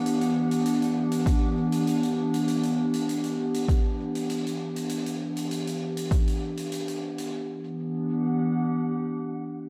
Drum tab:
HH |xx-xxx-xx--xxx-x|xx-xxx-xx--xxx-x|xx-xxx-xxx-xxx-x|----------------|
BD |--------o-------|--------o-------|--------o-------|----------------|